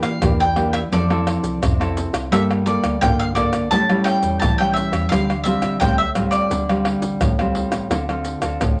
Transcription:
Already playing: nylon-string guitar E3
0.03 fm bass A#2, mandolin F5, pandeiro, tamborim, maracas
0.22 fm bass E2, nylon-string guitar E3 A#3 D4 G4, pandeiro, tamborim, maracas, surdo
0.40 mandolin G5, pandeiro, maracas
0.56 nylon-string guitar A#3 D4 G4, pandeiro, tamborim
0.73 mandolin E5, pandeiro, tamborim, maracas
0.92 fm bass F2, nylon-string guitar F3 C4 E4 A4, mandolin D5, pandeiro, maracas, surdo
1.10 nylon-string guitar C4 E4 A4, pandeiro, tamborim, maracas
1.27 pandeiro, tamborim, maracas
1.43 fm bass C2, pandeiro, maracas
1.61 fm bass F2, nylon-string guitar C3, pandeiro, tamborim, maracas, surdo
1.79 nylon-string guitar C4 E4 A4, pandeiro, tamborim, maracas
1.97 pandeiro, maracas
2.13 fm bass C2, pandeiro, tamborim, maracas
2.31 fm bass G2, nylon-string guitar G3 A#3 F4 A4, mandolin E5, pandeiro, tamborim, maracas, surdo
2.51 pandeiro, tamborim, maracas
2.66 nylon-string guitar A#3 F4 A4, mandolin D5, pandeiro, maracas
2.84 fm bass D2, pandeiro, tamborim, maracas
3.01 fm bass G2, nylon-string guitar D3 A#3 F4 A4, mandolin G5, pandeiro, tamborim, maracas, surdo
3.19 mandolin F5, pandeiro, maracas
3.35 nylon-string guitar A#3 F4 A4, mandolin D5, pandeiro, tamborim, maracas, surdo
3.53 pandeiro, tamborim, maracas
3.71 nylon-string guitar A2 G3 C#4 E4, fm bass A2, mandolin A5, pandeiro, maracas, surdo
3.89 nylon-string guitar G3 C#4 E4, pandeiro, tamborim, maracas
4.04 mandolin G5, pandeiro, tamborim
4.23 fm bass E2, pandeiro, maracas
4.40 fm bass A2, nylon-string guitar E3, mandolin A5, pandeiro, tamborim, maracas, surdo
4.58 nylon-string guitar G3 C#4 E4, mandolin G5, pandeiro, tamborim, maracas
4.74 mandolin E5, pandeiro, maracas
4.92 fm bass E2, pandeiro, tamborim, maracas
5.09 fm bass D2, nylon-string guitar D3 G3 C4 F4, mandolin F5, pandeiro, tamborim, maracas, surdo
5.30 pandeiro, tamborim, maracas
5.44 nylon-string guitar G3 C4 F4, mandolin E5, pandeiro, maracas
5.62 fm bass A1, pandeiro, tamborim, maracas
5.80 fm bass D2, nylon-string guitar A2 G3 C4 F4, mandolin G5, pandeiro, tamborim, maracas, surdo
5.98 mandolin E5, pandeiro, maracas
6.15 nylon-string guitar G3 C4 F4, pandeiro, tamborim, maracas, surdo
6.31 mandolin D5, pandeiro, tamborim, maracas
6.50 fm bass D2, nylon-string guitar D3, pandeiro, maracas, surdo
6.69 nylon-string guitar G3 C4 F4, pandeiro, tamborim, maracas
6.85 pandeiro, tamborim
7.01 fm bass A1, pandeiro, maracas
7.21 fm bass D2, nylon-string guitar A2, pandeiro, tamborim, maracas, surdo
7.39 nylon-string guitar G3 C4 F4, pandeiro, tamborim, maracas
7.55 pandeiro
7.71 fm bass A1, pandeiro, tamborim, maracas
7.90 fm bass D2, nylon-string guitar D3 C4 F4 A4, pandeiro, tamborim, maracas, surdo
8.09 nylon-string guitar C4 F4 A4, pandeiro, tamborim, maracas
8.25 pandeiro, maracas
8.42 fm bass D2, nylon-string guitar C4 F4 A4, pandeiro, tamborim, maracas
8.61 fm bass D2, nylon-string guitar A2, pandeiro, tamborim, maracas, surdo

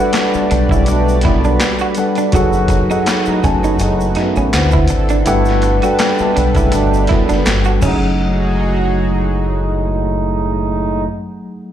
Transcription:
Already playing: tine electric piano G3 D4, analog synth pad F#4 G4 B4 D5
0.00 tine electric piano A4 B4 F#5
0.13 finger snap, muted clean electric guitar stroke, snare, clap, closed hi-hat, shaker
0.34 trombone section B2 A3 D4, muted fingered electric bass stroke, shaker
0.51 fingered electric bass B1, clean electric guitar D4, closed hi-hat, shaker
0.69 trombone section C#3 A3 C#4, clean electric guitar E4, kick, shaker
0.86 trombone section B2 A3 D4, muted clean electric guitar stroke, closed hi-hat, shaker
1.09 shaker
1.21 trombone section F#2 D3 B3, clean electric guitar E4, kick, snare, closed hi-hat
1.44 clean electric guitar D4, shaker
1.60 finger snap, snare, clap, closed hi-hat, shaker
1.79 clean electric guitar F#4, shaker
1.95 tine electric piano G3 D4 A4, muted clean electric guitar stroke, closed hi-hat, shaker
1.99 tine electric piano B4 F#5
2.15 clean electric guitar D4, closed hi-hat, shaker
2.32 fingered electric bass F#1, trombone section D#3 C#4 F#4, analog synth pad F#3 D#4 F#4, tine electric piano F#3 D#4 G#4 A4 F#5, clean electric guitar F#4, kick, closed hi-hat, shaker
2.53 shaker
2.68 muted clean electric guitar stroke, kick, closed hi-hat, shaker
2.90 tine electric piano F#3 D#4 G#4 A4 F#5, clean electric guitar D#4, shaker
3.06 finger snap, muted clean electric guitar stroke, snare, clap, closed hi-hat, shaker
3.25 trombone section A2 G#3 D#4, muted fingered electric bass stroke, shaker
3.44 fingered electric bass F#1, tine electric piano F#3 A3 D#4 G#5 A5, clean electric guitar C#4, kick, closed hi-hat, shaker
3.62 trombone section A2 G#3 C#4, clean electric guitar D#4, shaker
3.79 fingered electric bass F#1, trombone section A2 G#3 D#4, muted clean electric guitar stroke, closed hi-hat, shaker
4.00 shaker
4.15 trombone section F#2 E3 B3, clean electric guitar D#4, snare, closed hi-hat
4.36 fingered electric bass A1, clean electric guitar C#4, shaker
4.53 fingered electric bass D2, analog synth pad D3 C4 D4 E4 A4, tine electric piano D3 D4 E4 B4 C5 F#5, finger snap, snare, clap, closed hi-hat, shaker
4.71 clean electric guitar E4, kick, shaker
4.88 fingered electric bass G#1, muted clean electric guitar stroke, closed hi-hat, shaker
5.09 clean electric guitar D4, closed hi-hat, shaker
5.25 fingered electric bass G1, trombone section B2 A3 E4, tine electric piano G3 D4 A4 B4 F#5, analog synth pad G4 A4 B4, clean electric guitar G4, closed hi-hat, shaker
5.45 snare, shaker
5.62 muted clean electric guitar stroke, closed hi-hat, shaker
5.82 tine electric piano G3 D4 A4 B4 G5, clean electric guitar F#4, closed hi-hat, shaker
5.99 finger snap, muted clean electric guitar stroke, snare, clap, closed hi-hat, shaker
6.18 trombone section B2 A3 D4, muted fingered electric bass stroke, shaker
6.36 fingered electric bass B1, clean electric guitar D4, closed hi-hat, shaker
6.55 trombone section C#3 A3 C#4, clean electric guitar E4, kick, closed hi-hat, shaker
6.72 fingered electric bass G1, trombone section B2 A3 D4, muted clean electric guitar stroke, closed hi-hat, shaker
6.94 shaker
7.07 trombone section F#2 D3 B3, clean electric guitar E4, kick, snare, closed hi-hat
7.29 fingered electric bass F#1, clean electric guitar D4, snare, closed hi-hat, shaker
7.46 fingered electric bass G1, finger snap, snare, clap, closed hi-hat, shaker
7.64 clean electric guitar F#4, shaker
7.80 fingered electric bass F#1, trombone section A2 G#3 D#4, tine electric piano F#3 D#4, analog synth pad F#3 D#4 F#4 G#4, clean electric guitar C#4, kick, crash, shaker
7.84 tine electric piano A3 G#4 F#5

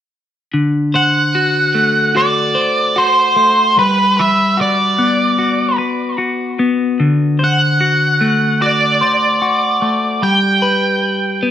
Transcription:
0.54 clean electric guitar D3
0.94 clean electric guitar C5, lead electric guitar F#5
1.35 clean electric guitar F#4
1.75 clean electric guitar A3
2.15 clean electric guitar F#4, lead electric guitar D5
2.55 clean electric guitar C5
2.96 clean electric guitar F#4, lead electric guitar C5
3.36 clean electric guitar A3
3.77 clean electric guitar G3, lead electric guitar B4
4.17 clean electric guitar B4, lead electric guitar E5
4.57 clean electric guitar F#4, lead electric guitar D5
4.98 clean electric guitar B3
5.39 clean electric guitar F#4
5.78 clean electric guitar B4
6.18 clean electric guitar F#4
6.59 clean electric guitar B3
7.00 clean electric guitar D3
7.39 clean electric guitar C5
7.44 lead electric guitar F#5
7.81 clean electric guitar F#4
8.21 clean electric guitar A3
8.61 clean electric guitar F#4, lead electric guitar D5
9.01 clean electric guitar C5
9.42 clean electric guitar F#4
9.82 clean electric guitar A3
10.22 clean electric guitar G3, lead electric guitar G5
10.62 clean electric guitar B4
11.43 clean electric guitar B3

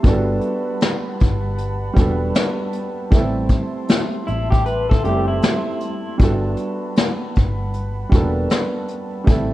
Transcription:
Already playing: ambient pad G3 A5
0.03 fingered electric bass G1, felt piano G3 B3 D4, ambient pad F#5 B5, kick, closed hi-hat
0.07 felt piano F#4 A4
0.41 closed hi-hat
0.81 snare, closed hi-hat
1.20 fingered electric bass G1, kick, closed hi-hat
1.58 closed hi-hat
1.94 fingered electric bass E1, felt piano G3 B3 D4, kick, closed hi-hat
1.98 felt piano F#4 A4
2.35 snare, closed hi-hat
2.73 closed hi-hat
3.11 fingered electric bass A1, felt piano G3 A3 B3, ambient pad E5 C6, kick, closed hi-hat
3.15 felt piano E4 A4
3.20 felt piano C4
3.49 kick, closed hi-hat
3.88 snare, closed hi-hat
4.27 fingered electric bass A1, clean electric guitar E4, closed hi-hat
4.51 clean electric guitar G4, kick
4.66 clean electric guitar B4, closed hi-hat
4.89 clean electric guitar A4, kick
5.04 fingered electric bass F#1, felt piano G3 A3 C4, clean electric guitar G4, closed hi-hat
5.08 felt piano E4 G4
5.16 felt piano A4
5.28 clean electric guitar E4
5.42 snare, closed hi-hat
5.80 closed hi-hat
6.18 fingered electric bass G1, felt piano G3 B3 D4, ambient pad F#5 B5, kick, closed hi-hat
6.22 felt piano F#4 A4
6.57 closed hi-hat
6.96 snare, closed hi-hat
7.35 fingered electric bass G1, kick, closed hi-hat
7.73 closed hi-hat
8.09 fingered electric bass E1, felt piano G3 A#3 D4, kick, closed hi-hat
8.14 felt piano B3 F#4 A4
8.50 snare, closed hi-hat
8.88 closed hi-hat
9.24 fingered electric bass A1, felt piano G3 A3 C4, ambient pad E5 C6, kick, closed hi-hat
9.29 felt piano E4 A4

